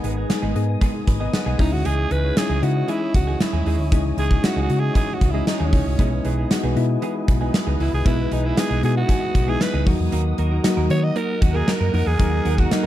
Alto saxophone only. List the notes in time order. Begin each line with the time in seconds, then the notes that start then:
Already playing: B3
1.60 D#4
1.73 F#4
1.86 G#4
2.12 B4
2.38 G#4
2.64 F#4
2.90 E4
3.15 F#4
3.42 E4
4.19 G#4
4.45 F#4
4.62 F#4
4.80 G#4
4.97 G#4
5.14 F#4
5.31 E4
5.48 D#4
5.65 C#4
7.81 E4
7.94 G#4
8.07 E4
8.33 D#4
8.46 E4
8.59 G#4
8.85 G#4
8.97 F#4
9.49 G#4
9.62 B4
10.91 C#5
11.04 D#5
11.17 A#4
11.42 F#4
11.53 G#4 A#4
11.68 A#4
11.94 A#4
12.07 G#4
12.59 F#4
12.72 D#4